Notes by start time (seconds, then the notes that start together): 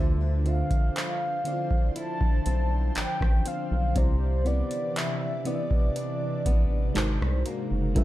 Already playing: D2 D3 F3 D4 F4 C5
0.00 E5
0.44 D3 C4 D4 F4 C5 E5 F5, closed hi-hat
0.54 F5
0.71 kick, closed hi-hat
0.96 F3, clap, closed hi-hat
1.44 D3 C4 D4 E4 C5 D5, closed hi-hat
1.53 F4
1.71 kick
1.96 D4 E4 A5, closed hi-hat
2.21 kick
2.46 B1 C4, closed hi-hat
2.95 A1 D4 G5, clap, closed hi-hat
3.21 A1, kick, cross-stick
3.46 C4 F5, closed hi-hat
3.71 B1
3.94 C2 C3 E3 C4 E4 C5 D5, kick, closed hi-hat
4.44 C3 B3 C4 E4 B4 D5, closed hi-hat
4.71 closed hi-hat
4.96 E3 E5, clap, closed hi-hat
5.45 C3 B3 C4 E4 B4 D5 D#5, closed hi-hat
5.55 E5
5.71 kick
5.96 D4, closed hi-hat
6.46 A1 B3, kick, closed hi-hat
6.94 G#1 G#2 G#3 D#4 F#4 A#4 C5, clap, closed hi-hat
7.21 C2, cross-stick
7.46 A#3, closed hi-hat
7.71 F#1
7.94 G1 G2 G3 D4 F4 A4 B4 E5, kick, closed hi-hat